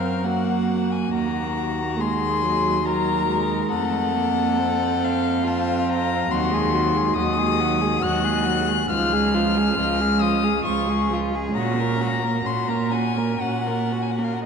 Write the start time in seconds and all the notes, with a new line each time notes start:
Already playing: F#2 C4 A#4 F5
0.24 A#3 F#4 F#5
0.92 G#5
1.11 D#2 A#3 F#4 A#5
1.99 G#3 G#4 C6
2.42 F#3
2.85 F#3 A#4 A#5
3.29 G#3
3.71 F2 A3 A4 F#5
4.16 A#3
4.59 C4
5.04 F5
5.44 C4 F4 A5
5.89 A#5
6.30 D#2 F#3 F#4 C6
6.51 G#3 G#4
6.72 F#3 F#4
6.94 G#3 G#4
7.16 D#2 F#3 F#4 D#6
7.39 G#3 G#4
7.61 F#3 F#4
7.81 G#3 G#4
8.02 D#2 F#3 F#4 F#6
8.24 G#3 G#4
8.45 F#3 F#4
8.68 G#3 G#4
8.90 C#2 F3 F4 F6
9.13 G#3 G#4
9.34 F3 F4
9.57 G#3 G#4
9.77 C#2 F3 F4
10.00 G#3 G#4
10.21 F3 F4 D#6
10.43 G#3 G#4
10.65 C#2 F3 F4 C#6
10.87 G#3 G#4
11.09 F3 F4
11.32 G#3 G#4
11.53 A#2 C#4 A#5
11.57 F#4
11.74 A#3
11.80 A#4
11.96 C#4
12.01 F#4
12.20 A#3 A#4
12.44 A#2 C#4 F#4 C6
12.68 A#3 A#4 A#5
12.90 C#4 F#4 G#5
13.17 A#3 A#4
13.41 A#2 C#4 F#4 F#5
13.66 A#3 A#4
13.92 C#4 F#4
14.02 G#5
14.11 F#5
14.18 A#3 A#4
14.24 F5
14.33 F#5